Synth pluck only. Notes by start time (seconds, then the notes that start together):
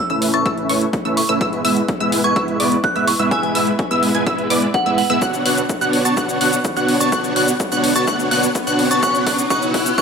0.10 E6
0.34 A6
0.46 E6
0.69 C#6
1.05 E6
1.29 E6
1.41 E6
1.65 E6
2.00 E6
2.24 G#6
2.36 E6
2.60 D6
2.96 E6
3.19 E6
3.31 E6
3.55 E6
3.91 E6
4.15 G#6
4.27 E6
4.50 D6
4.86 E6
5.10 E6
5.22 F#6
5.46 F#6
5.81 F#6
6.05 A6
6.17 F#6
6.41 F#6
6.77 F#6
7.00 A6
7.12 F#6
7.36 F#6
7.72 F#6
7.96 A6
8.08 F#6
8.31 F#6
8.67 F#6
8.91 A6
9.03 F#6
9.27 F#6
9.50 F#6
9.74 F#6
9.98 F#6